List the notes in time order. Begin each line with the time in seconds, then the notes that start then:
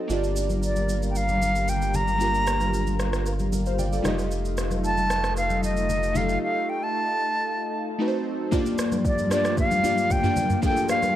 Already playing: C4 D#4 F#4 A4 D#5
0.08 G1 G3 A#3 D4 F4 A#4, shaker
0.12 G4 D5
0.24 shaker
0.36 shaker
0.50 high conga, shaker
0.63 D5, shaker
0.76 high conga, shaker
0.89 shaker
1.03 shaker
1.10 G5
1.15 F5, shaker
1.29 high conga, shaker
1.42 high conga, shaker
1.55 shaker
1.68 G5, low conga, shaker
1.82 shaker
1.94 A#5, high conga, low conga, shaker
2.08 shaker
2.18 A#3 D4 F4, shaker
2.22 G4 A#4
2.35 shaker
2.47 cross-stick, shaker
2.61 high conga, shaker
2.74 shaker
2.87 high conga, shaker
3.00 cross-stick, shaker
3.13 cross-stick, shaker
3.26 shaker
3.39 high conga, shaker
3.53 high conga, shaker
3.66 C5 F5, shaker
3.79 D5 G5, low conga, shaker
3.92 A4 D5, shaker
4.02 F1 G3 A3 D#4 F4 G4, cross-stick, high conga, low conga, shaker
4.08 A3 D#5
4.19 shaker
4.31 shaker
4.45 shaker
4.57 cross-stick, shaker
4.71 high conga, shaker
4.84 A5, shaker
4.98 high conga, shaker
5.10 cross-stick, shaker
5.24 cross-stick, shaker
5.37 F5, shaker
5.50 high conga, shaker
5.63 D#5, high conga, shaker
5.77 shaker
5.89 low conga, shaker
6.03 shaker
6.13 A3 D#4 F4 G4 F5, high conga, low conga, shaker
6.19 A4
6.29 shaker
6.43 F5
6.69 G5
6.83 A5
7.98 F#3 A3 C4 D#4 F#4 A4 B4
8.08 C5
8.51 G2 F3 A#3 D4 F4 G4 D5, kick, shaker
8.66 shaker
8.78 cross-stick, shaker
8.92 high conga, shaker
9.05 D5, kick, shaker
9.18 high conga, shaker
9.30 A3 D4 F4 G4 D5, cross-stick, shaker
9.36 A#3
9.45 cross-stick, shaker
9.57 F5, kick, shaker
9.71 high conga, shaker
9.83 A#3 D4 F4 G4 D5, high conga, shaker
9.98 shaker
10.10 G5, kick, low conga, shaker
10.23 A#3 D4 F4 G4 D5, mid tom, shaker
10.36 high conga, low conga, shaker
10.50 mid tom, shaker
10.62 A#3 D4 F4 G4 G#4 G5, kick, shaker
10.71 A4
10.77 shaker
10.89 F5, cross-stick, shaker
11.03 high conga, shaker